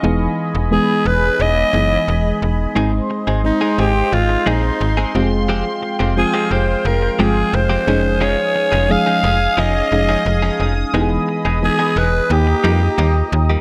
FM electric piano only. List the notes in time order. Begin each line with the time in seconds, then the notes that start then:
0.03 E3 G#3 B3 D#4 G#4
0.71 E3 G#3 B3 D#4 G#4
1.73 E3 G#3 B3 D#4 G#4
2.75 G#3 C4 D#4
3.44 G#3 C4 D#4
4.46 G#3 C4 D#4
5.15 G#3 C4 F4 G4
5.22 G#4
6.16 F3 G#3 C4 F4 G#4
7.19 F3 G#3 C4 F4 G#4
7.87 F3 G#3 C#4 D#4 G#4
8.89 F3 G#3 C#4 D#4 G#4
9.92 F3 G#3 C#4 D#4 G#4
10.94 E3 G#3 B3 D#4 G4
11.01 G#4
11.62 E3 G#3 B3 D#4 G#4
12.30 A#3 D#4 G4
12.64 A#3 D#4 F4
12.72 G4